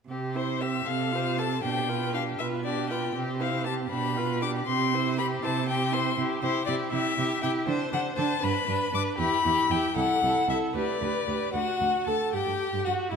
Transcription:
0.09 cello C3, viola C4, violin G4
0.35 viola E4, violin C5
0.61 viola C4, violin G4 E5
0.86 cello C3, viola C4, violin A4 F5
1.12 viola F4, violin C5
1.38 viola C4, violin A4 A5
1.63 cello B2, viola D4, violin G4 G5
1.89 viola F4, violin B4
2.14 viola D4, violin G4 F5
2.39 cello B2, viola F4, violin B4 E5
2.65 viola D4, violin G4 D5
2.89 viola F4, violin B4 G5
3.15 cello C3, viola C4, violin G4
3.40 viola E4, violin C5 F5
3.65 viola C4, violin G4 A5
3.90 cello B2, viola D4, violin G4 B5
4.17 viola F4, violin B4
4.42 viola D4, violin G4 D6
4.67 cello C3, viola C4, violin G4 C6
4.94 viola E4, violin C5
5.18 viola C4, violin G4 B5
5.42 cello C3, viola E4, violin C5 A5
5.67 viola C4, violin G4 G5
5.92 viola E4, violin C5 C6
6.18 cello C3, viola E4, violin G4
6.42 cello C3, viola E4, violin G4 C5
6.66 cello C3, viola E4, violin G4 D5
6.92 cello C3, viola E4, violin G4 E5
7.16 cello C3, viola E4, violin G4
7.42 cello C3, viola E4, violin G4 G5
7.67 cello D3, viola D4, violin C5
7.92 cello D3, viola D4, violin C5 F#5
8.16 cello D3, viola D4, violin C5 A5
8.42 cello G2, viola D4, violin B4 B5
8.67 cello G2, viola D4, violin B4
8.93 cello G2, viola D4, violin B4 D6
9.18 cello E2, viola E4, violin G4 B5
9.44 cello E2, viola E4, violin G4
9.70 cello E2, viola E4, violin G4 G5
9.96 cello C2, viola E4, violin A4 F#5
10.23 cello C2, viola E4, violin A4
10.49 cello C2, viola E4, violin A4 E5
10.75 cello D2, viola G4, violin B4 D5
11.01 cello D2, viola G4, violin B4
11.28 cello D2, viola G4, violin B4
11.53 cello D2, violin F#4 F#5, viola F#4
11.80 cello D2
12.07 cello D2, violin A4 A5, viola A4
12.33 cello G2, viola G4, violin G4 G5
12.46 cello G2
12.73 cello G2
12.85 cello G2, violin F#4 F#5, viola F#4
13.11 cello G2, violin E4 E5, viola E4

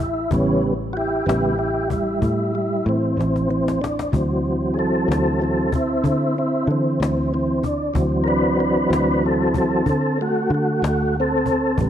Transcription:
Already playing: fingered electric bass A1, tonewheel organ E4
0.31 fingered electric bass A1, tonewheel organ C#3 E3 G3 B3 C#4, cajon bass
0.63 cajon slap
0.93 tonewheel organ E4 F#4 G4, cajon slap
1.26 fingered electric bass A1, tonewheel organ C#3 G3 B3 E4 G4, cajon slap
1.59 tonewheel organ E4 G4, cajon slap
1.90 tonewheel organ G3 E4, cajon bass
2.22 fingered electric bass A2, tonewheel organ G3 E4, cajon bass
2.54 tonewheel organ G3 E4, cajon slap
2.86 fingered electric bass A2, tonewheel organ E3 C4, cajon slap
3.17 fingered electric bass A1, tonewheel organ E3 C4, cajon slap
3.21 cajon slap
3.36 cajon slap
3.50 tonewheel organ E3 C4, cajon slap
3.68 cajon slap
3.81 tonewheel organ D4, cajon slap
3.99 cajon slap
4.12 fingered electric bass D2, tonewheel organ E3 F#3 C4, cajon bass
4.45 cajon slap
4.74 tonewheel organ G#4, cajon slap
4.79 tonewheel organ C4 A4
5.08 fingered electric bass D2, tonewheel organ C4 A4, cajon slap
5.40 tonewheel organ E3 F#3 C4 A4, cajon slap
5.72 tonewheel organ C4 E4, cajon bass
6.04 fingered electric bass D3, tonewheel organ C4 E4, cajon bass
6.36 tonewheel organ C4 E4, cajon slap
6.67 fingered electric bass D3, tonewheel organ E3, cajon slap
6.71 tonewheel organ C4
7.00 fingered electric bass D2, tonewheel organ E3 C4, cajon slap
7.32 tonewheel organ E3 C4, cajon slap
7.63 tonewheel organ D4, cajon bass
7.94 fingered electric bass D2, tonewheel organ E3 F#3 C4, cajon bass
8.24 tonewheel organ D4 A#4, cajon slap
8.28 tonewheel organ B4
8.59 tonewheel organ D4 B4, cajon slap
8.90 fingered electric bass D2, tonewheel organ D4, cajon slap
8.94 tonewheel organ B4
9.22 tonewheel organ C4 A4, cajon slap
9.54 tonewheel organ E3 F#3 C4, cajon bass
9.58 tonewheel organ A4
9.86 fingered electric bass D3, tonewheel organ C4 A4, cajon bass, cajon slap
10.18 tonewheel organ A3 F#4, cajon slap
10.50 fingered electric bass D3, cajon slap
10.54 tonewheel organ A3 F#4
10.82 fingered electric bass D2, cajon slap
10.87 tonewheel organ A3 F#4
11.14 cajon slap
11.20 tonewheel organ C4 A4
11.46 cajon bass, cajon slap
11.78 fingered electric bass A1, tonewheel organ C#3 G3 B3, cajon bass

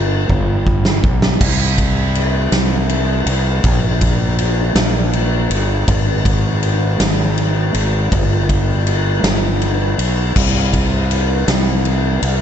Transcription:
Already playing: fingered electric bass G1
0.29 fingered electric bass G1, kick
0.67 kick
0.85 snare
1.03 fingered electric bass B1, kick
1.22 snare
1.41 fingered electric bass C2, kick, crash
1.78 kick, ride
2.15 ride
2.52 fingered electric bass C2, snare, ride
2.89 ride
3.26 fingered electric bass C2, ride
3.64 fingered electric bass A#1, kick, ride
4.01 kick, ride
4.38 ride
4.75 fingered electric bass A#1, snare, ride
5.13 ride
5.50 fingered electric bass G1, ride
5.88 fingered electric bass G#1, kick, ride
6.25 kick, ride
6.63 ride
7.00 fingered electric bass G#1, snare, ride
7.38 ride
7.74 fingered electric bass G#1, ride
8.12 fingered electric bass G1, kick, ride
8.49 kick, ride
8.87 ride
9.23 fingered electric bass G1, snare, ride
9.62 ride
9.98 fingered electric bass B1, ride
10.36 fingered electric bass C2, kick, crash
10.73 kick, ride
11.11 ride
11.48 fingered electric bass C2, snare, ride
11.85 ride
12.22 fingered electric bass C2, ride

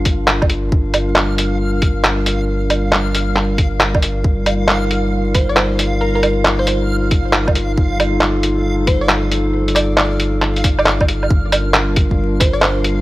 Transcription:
Already playing: sub bass G1, analog synth pad G3 D4 F4 A#4, synth texture F5
0.05 kick, closed hi-hat
0.28 clap
0.42 kick, low woodblock
0.50 closed hi-hat
0.72 kick
0.94 closed hi-hat, low woodblock
1.16 clap
1.38 closed hi-hat
1.82 kick, closed hi-hat
2.04 clap
2.26 closed hi-hat
2.70 closed hi-hat, low woodblock
2.92 clap
3.15 closed hi-hat
3.36 clap
3.58 kick, closed hi-hat
3.80 clap
3.95 kick, low woodblock
4.02 closed hi-hat
4.24 sub bass G1, analog synth pad D#4 F4, kick
4.46 closed hi-hat, low woodblock
4.68 clap
4.91 closed hi-hat
5.35 synth pluck C5, kick, closed hi-hat
5.49 synth pluck D5
5.56 synth pluck C5, clap
5.79 closed hi-hat
6.01 synth pluck A#4
6.15 synth pluck A#4
6.23 closed hi-hat, low woodblock
6.45 clap
6.59 synth pluck C5
6.67 synth pluck C5, closed hi-hat
7.11 kick, closed hi-hat
7.33 clap
7.48 kick, low woodblock
7.55 closed hi-hat
7.78 analog synth pad A4, kick
8.00 closed hi-hat, low woodblock
8.21 clap
8.43 closed hi-hat
8.87 synth pluck C5, kick, closed hi-hat
9.01 synth pluck D5
9.09 clap
9.32 closed hi-hat
9.68 closed hi-hat
9.75 synth pluck D5, closed hi-hat, low woodblock
9.97 synth pluck D5, clap
10.20 closed hi-hat
10.42 clap
10.56 closed hi-hat
10.64 kick, closed hi-hat
10.79 synth pluck D5, low woodblock
10.86 clap
11.01 kick, low woodblock
11.08 closed hi-hat
11.23 low woodblock
11.30 sub bass G1, analog synth pad G3 D4 F4 A#4, synth texture F5, kick
11.52 closed hi-hat, low woodblock
11.74 clap
11.96 kick, closed hi-hat
12.11 kick
12.40 synth pluck C5, kick, closed hi-hat
12.53 synth pluck D5
12.62 synth pluck C5, clap
12.84 closed hi-hat

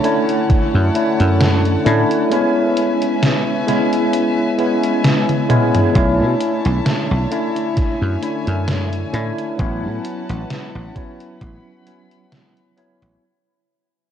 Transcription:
Already playing: string section D3 C#5 A5, tine electric piano A3 C#4 D4 E4
0.03 tine electric piano A3 C#4 D4 E4, string section F#5, closed hi-hat
0.29 closed hi-hat
0.50 muted slap bass stroke, kick, snare, closed hi-hat
0.75 slap bass F#2
0.94 tine electric piano A3 C#4 D4 E4, closed hi-hat
1.20 slap bass F#2, closed hi-hat
1.41 snare, closed hi-hat
1.65 closed hi-hat
1.85 slap bass A2, tine electric piano A3 C#4 D4 E4, closed hi-hat
2.11 closed hi-hat
2.30 tine electric piano G#3 B3 C#4 E4, string section C#4 B4 E5 G#5, closed hi-hat
2.77 closed hi-hat
3.02 closed hi-hat
3.23 snare, closed hi-hat
3.67 tine electric piano G#3 B3 C#4 E4, snare, closed hi-hat
3.93 closed hi-hat
4.13 closed hi-hat
4.58 tine electric piano G#3 B3 C#4 E4, closed hi-hat
4.83 closed hi-hat
5.04 snare, closed hi-hat, high tom
5.29 closed hi-hat, high tom
5.49 tine electric piano G#3 B3 C#4 E4, closed hi-hat, mid tom
5.75 closed hi-hat, mid tom
5.93 slap bass B1, string section D3 C#5 E5 A5, tine electric piano A3 C#4 D4 E4, kick, closed hi-hat
6.20 slap bass B2
6.41 closed hi-hat
6.65 slap bass B1, closed hi-hat
6.86 snare, closed hi-hat
7.11 slap bass B1
7.31 tine electric piano A3 C#4 D4 E4, closed hi-hat
7.57 closed hi-hat
7.77 string section G#5, muted slap bass stroke, kick, snare, closed hi-hat
8.02 slap bass F#2
8.22 tine electric piano A3 C#4 D4 E4, closed hi-hat
8.47 slap bass F#2, closed hi-hat
8.68 snare, closed hi-hat
8.93 closed hi-hat
9.13 slap bass A2, tine electric piano A3 C#4 D4 E4, closed hi-hat
9.38 closed hi-hat
9.58 slap bass A1, tine electric piano F#3 B3 C#4 E4, string section C#4 B4 F#5 A5, kick, closed hi-hat
9.84 slap bass A2
10.05 closed hi-hat
10.29 slap bass A1, closed hi-hat
10.50 snare, closed hi-hat
10.75 slap bass A1
10.95 tine electric piano F#3 B3 C#4 E4, kick, closed hi-hat
11.20 closed hi-hat
11.40 slap bass A1, string section B5, kick, closed hi-hat
11.86 tine electric piano F#3 B3 C#4 E4, closed hi-hat
12.11 closed hi-hat
12.32 snare, closed hi-hat
12.57 closed hi-hat
12.77 tine electric piano F#3 B3 C#4 E4, closed hi-hat
13.02 slap bass A1, closed hi-hat

